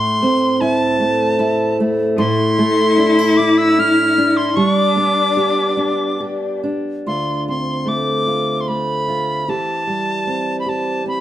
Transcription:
Already playing: A2 A3 E4 C6
0.23 C4
0.61 E4 A5
0.99 A3
1.39 E4
1.80 A3
2.16 A2 E4 C6
2.58 A3
2.98 D4
3.19 E4
3.37 D4 D6
3.58 E6
3.78 E4 F6
4.18 D4
4.37 C6
4.56 G3 D4 C#6
4.75 D6
4.96 B3
5.37 G4
5.77 D4
6.20 G4
6.63 D4
7.06 D2 F4 C6
7.48 C4 C6
7.86 A3 D6
8.27 F4
8.61 C6
8.68 A3 B5
9.08 F4
9.48 E3 G4 A5
9.87 G3
10.27 C4
10.60 B5
10.66 G4 A5
11.06 C4 B5

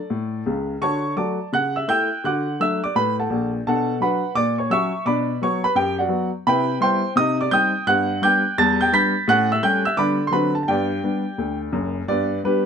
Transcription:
Already playing: A4 D5
0.10 A2
0.46 C#2 C#3
0.81 D3 F#4 C#5 A5 C#6
1.16 F#3 A3 F#4 D5 A5 D6
1.53 C#3 F#5 F#6
1.76 E5 E6
1.88 A3 E4 G5 E6 G6
2.24 D3 F#4 F#5 D6 F#6
2.60 F#3 A3 D4 E5 E6
2.84 D5 D6
2.95 A2 B4 B5
3.19 A4 F#5 A5
3.30 A#1 A#2
3.67 B2 D4 A4 F#5 A5
4.00 F#3 D4 F#4 B4 F#5 B5
4.35 A#2 D5 D6
4.58 C#5 C#6
4.70 F#3 C#4 F#4 E5 C#6 E6
5.05 B2 D4 D5 B5 D6
5.42 F#3 B3 F#4 C#5 C#6
5.64 B4 B5
5.75 F#2 G4 G5
5.99 F#4 D5 F#5
6.09 F#3 B3 F#4
6.47 C3 E4 B4 G5 B5
6.80 G3 B3 E4 C5 G5 C6
7.16 C3 D#4 D#5 D#6
7.41 D5 D6
7.51 G3 C4 D#4 G5 D#6 G6
7.87 G2 B3 F#5 F#6
8.22 G3 B3 D4 G5 D6 G6
8.58 E2 G3 A5 A6
8.81 G5 G6
8.92 G3 B3 D4 B5 G6 B6
9.28 A2 C#4 F#5 F#6
9.52 E5 E6
9.62 G3 A3 C#4 G5 G6
9.85 E5 E6
9.97 D3 G3 B3 D4 D5 B5 D6
10.27 F#3 C6
10.32 D3 C4 D4 F#4 B4 B5
10.55 A5
10.63 A5
10.68 G2 B3 G4 D5 G5
11.04 G3 B3 D4
11.38 D2
11.72 F#1 F#2
12.08 G2 B3 B4 D5
12.44 G3 B3 D4 G4 B4

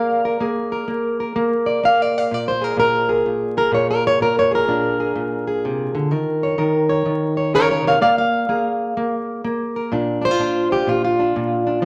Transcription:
Already playing: A#3 G#4 A#4 F5
0.25 A#4
0.40 A#3 G#4
0.72 A#4
0.88 A#3
1.20 A#4
1.36 A#3
1.66 D5
1.83 A#3 F5
2.02 D5
2.18 F5
2.31 A#2 D5
2.48 C5
2.61 G#4 A#4
2.77 A#2 A#4
3.09 G#4
3.26 A#2
3.57 G#4 A#4
3.72 A#2 C#5
3.91 A#4
4.07 C#5
4.20 A#2 A#4
4.39 C#5
4.51 G#4 A#4
4.68 A#2 D4
5.00 G#4
5.16 A#2
5.47 G#4
5.65 C3
5.95 D3
6.11 D#3 A#4
6.43 C#5
6.58 D#3 A#4
6.89 C#5
7.06 D#3
7.37 C#5
7.54 C#3 A#4 C#5
7.71 C#5
7.84 C3 C#5 F5
8.01 A#3 D5 F5
8.18 F5
8.49 A#3 G#4
8.97 A#3
9.44 A#3
9.76 A#4
9.92 A#2 D4
10.22 D4 C5
10.31 F4
10.39 A#2 D4
10.71 F4 G4
10.87 A#2 F4
11.04 F4
11.19 D4
11.36 A#2
11.67 D4

